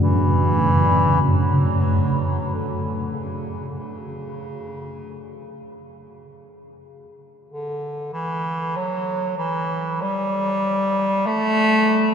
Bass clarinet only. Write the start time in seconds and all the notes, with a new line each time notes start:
0.01 E3
1.27 F#3
2.54 D3
3.15 C#3
3.68 D3
3.79 C#3
7.51 D3
8.13 E3
8.76 F#3
9.38 E3
10.02 G3
11.27 A3